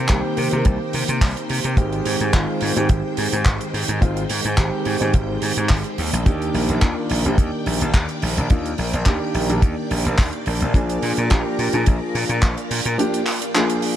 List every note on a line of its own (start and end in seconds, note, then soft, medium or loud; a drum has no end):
0.00 10.71 D#3 medium
0.00 1.74 A#3 medium
0.00 5.94 C5 medium
0.00 5.94 G5 medium
0.08 0.21 C2 medium
0.08 0.48 D#3 medium
0.08 0.48 A#3 medium
0.08 0.49 C4 medium
0.08 0.49 G4 loud
0.08 kick loud
0.08 clap loud
0.08 closed hi-hat medium
0.37 0.49 C3 medium
0.37 open hi-hat medium
0.51 0.63 C3 medium
0.51 1.74 D#3 medium
0.51 1.74 A#3 medium
0.51 1.74 C4 medium
0.51 1.75 G4 medium
0.51 closed hi-hat medium
0.65 0.77 C2 loud
0.65 kick loud
0.65 closed hi-hat medium
0.93 1.05 C3 medium
0.93 open hi-hat loud
1.08 1.19 C3 medium
1.08 closed hi-hat medium
1.21 1.33 C2 medium
1.21 kick loud
1.21 clap loud
1.21 open hi-hat medium
1.37 closed hi-hat medium
1.49 1.61 C3 medium
1.49 open hi-hat loud
1.64 1.75 C3 medium
1.64 closed hi-hat medium
1.77 2.00 G#1 loud
1.77 2.30 D#3 medium
1.77 2.30 G#3 medium
1.77 5.94 G#3 medium
1.77 2.30 C4 medium
1.77 2.31 G4 loud
1.77 kick loud
1.77 closed hi-hat medium
1.92 closed hi-hat soft
2.05 2.17 G#2 medium
2.05 open hi-hat loud
2.20 2.31 G#2 medium
2.20 closed hi-hat medium
2.33 2.45 G#1 medium
2.33 2.72 D#3 medium
2.33 2.73 G#3 medium
2.33 2.73 C4 medium
2.33 2.73 F4 medium
2.33 kick loud
2.33 clap loud
2.33 closed hi-hat medium
2.61 2.73 G#2 medium
2.61 open hi-hat loud
2.75 2.87 G#2 medium
2.75 3.98 D#3 medium
2.75 3.98 G#3 medium
2.75 3.98 C4 medium
2.75 3.99 G4 medium
2.75 closed hi-hat medium
2.89 3.01 G#1 medium
2.89 kick loud
2.89 closed hi-hat medium
3.17 3.29 G#2 medium
3.17 open hi-hat loud
3.32 3.43 G#2 medium
3.32 closed hi-hat medium
3.45 3.57 G#1 medium
3.45 kick loud
3.45 clap loud
3.45 closed hi-hat medium
3.61 closed hi-hat soft
3.74 3.85 G#2 medium
3.74 open hi-hat loud
3.88 3.99 G#2 medium
3.88 closed hi-hat medium
4.01 4.24 G#1 loud
4.01 4.21 D#3 medium
4.01 4.21 G#3 medium
4.01 4.21 C4 medium
4.01 4.21 F4 loud
4.01 kick loud
4.01 closed hi-hat medium
4.17 closed hi-hat soft
4.29 4.42 G#2 medium
4.29 open hi-hat loud
4.44 4.55 G#2 medium
4.44 closed hi-hat medium
4.57 4.70 G#1 medium
4.57 4.97 D#3 medium
4.57 4.97 G#3 medium
4.57 4.97 C4 medium
4.57 4.97 G4 loud
4.57 kick loud
4.57 clap loud
4.57 closed hi-hat medium
4.85 4.98 G#2 medium
4.85 open hi-hat loud
4.99 5.11 G#2 medium
4.99 5.96 D#3 medium
4.99 5.96 G#3 medium
4.99 5.96 C4 medium
4.99 5.97 G4 medium
4.99 closed hi-hat medium
5.14 5.36 G#1 medium
5.14 kick loud
5.14 closed hi-hat medium
5.42 5.54 G#2 medium
5.42 open hi-hat loud
5.57 5.67 G#2 loud
5.57 closed hi-hat medium
5.69 5.82 G#1 medium
5.69 kick loud
5.69 clap loud
5.69 open hi-hat medium
5.84 closed hi-hat soft
5.98 6.10 D#2 medium
5.98 13.96 A#3 medium
5.98 13.96 D5 medium
5.98 10.71 G5 medium
5.98 open hi-hat loud
6.13 6.23 A#1 medium
6.13 closed hi-hat medium
6.25 6.79 D#3 loud
6.25 6.79 A#3 medium
6.25 6.79 D4 medium
6.25 6.79 G4 loud
6.25 kick loud
6.25 closed hi-hat medium
6.42 closed hi-hat soft
6.54 6.66 A#1 loud
6.54 open hi-hat loud
6.69 6.79 A#1 medium
6.69 closed hi-hat medium
6.81 6.94 D#2 loud
6.81 7.21 D#3 medium
6.81 7.21 A#3 medium
6.81 7.21 D4 medium
6.81 7.21 F4 medium
6.81 kick loud
6.81 clap loud
6.81 closed hi-hat medium
7.09 7.22 A#1 medium
7.09 open hi-hat loud
7.24 7.36 A#1 medium
7.24 8.46 D#3 medium
7.24 8.47 A#3 medium
7.24 8.47 D4 medium
7.24 8.47 G4 medium
7.24 closed hi-hat medium
7.38 7.50 D#2 loud
7.38 kick loud
7.38 closed hi-hat medium
7.66 7.78 A#1 medium
7.66 open hi-hat loud
7.81 7.92 A#1 medium
7.81 closed hi-hat medium
7.94 8.06 D#2 medium
7.94 kick loud
7.94 clap loud
7.94 closed hi-hat medium
8.09 closed hi-hat soft
8.22 8.34 A#1 medium
8.22 open hi-hat loud
8.37 8.48 A#1 medium
8.37 closed hi-hat medium
8.50 8.73 D#2 loud
8.50 8.69 D#3 medium
8.50 8.70 A#3 medium
8.50 8.70 D4 medium
8.50 8.70 F4 loud
8.50 kick loud
8.50 closed hi-hat medium
8.65 closed hi-hat medium
8.78 8.90 A#1 loud
8.78 open hi-hat loud
8.93 9.04 A#1 medium
8.93 closed hi-hat medium
9.05 9.18 D#2 loud
9.05 9.45 D#3 medium
9.05 9.45 A#3 medium
9.05 9.46 D4 medium
9.05 9.46 G4 loud
9.05 kick loud
9.05 clap loud
9.05 closed hi-hat medium
9.34 9.46 A#1 medium
9.34 open hi-hat loud
9.48 9.60 A#1 medium
9.48 10.71 D#3 medium
9.48 10.71 A#3 medium
9.48 10.71 D4 medium
9.48 10.72 G4 medium
9.48 closed hi-hat medium
9.62 9.74 D#2 medium
9.62 kick loud
9.62 closed hi-hat medium
9.91 10.02 A#1 medium
9.91 open hi-hat loud
10.05 10.16 A#1 medium
10.05 closed hi-hat medium
10.18 kick loud
10.18 clap loud
10.18 open hi-hat medium
10.33 closed hi-hat soft
10.46 10.58 A#1 medium
10.46 open hi-hat loud
10.60 10.72 A#1 medium
10.60 closed hi-hat medium
10.74 10.97 A#1 loud
10.74 11.27 F3 medium
10.74 11.27 A#3 medium
10.74 11.27 D4 medium
10.74 13.96 F4 medium
10.74 11.28 G#4 loud
10.74 12.97 A#5 medium
10.74 kick loud
10.74 closed hi-hat medium
10.89 closed hi-hat medium
11.02 11.14 A#2 loud
11.02 open hi-hat loud
11.17 11.28 A#2 medium
11.17 closed hi-hat medium
11.30 11.43 A#1 medium
11.30 11.70 F3 medium
11.30 11.70 A#3 medium
11.30 11.70 D4 medium
11.30 11.70 G4 loud
11.30 kick loud
11.30 clap loud
11.30 closed hi-hat medium
11.59 11.70 A#2 medium
11.59 open hi-hat loud
11.73 11.84 A#2 medium
11.73 12.95 F3 medium
11.73 12.96 A#3 medium
11.73 12.96 D4 medium
11.73 12.96 G#4 medium
11.73 closed hi-hat medium
11.86 11.99 A#1 loud
11.86 kick loud
11.86 closed hi-hat medium
12.15 12.26 A#2 medium
12.15 open hi-hat loud
12.29 12.40 A#2 medium
12.29 closed hi-hat medium
12.42 12.54 A#1 medium
12.42 kick loud
12.42 clap loud
12.42 closed hi-hat medium
12.57 closed hi-hat medium
12.71 12.82 A#2 medium
12.71 open hi-hat loud
12.85 12.96 A#2 medium
12.85 closed hi-hat medium
12.98 13.18 F3 medium
12.98 13.18 A#3 medium
12.98 13.18 D4 medium
12.98 13.18 G4 loud
12.98 13.96 G5 medium
12.98 closed hi-hat medium
13.14 closed hi-hat medium
13.26 clap medium
13.26 open hi-hat loud
13.42 closed hi-hat medium
13.54 13.94 F3 medium
13.54 13.94 A#3 medium
13.54 13.94 D4 medium
13.54 13.94 G#4 medium
13.54 clap loud
13.54 closed hi-hat medium
13.70 closed hi-hat soft
13.82 open hi-hat loud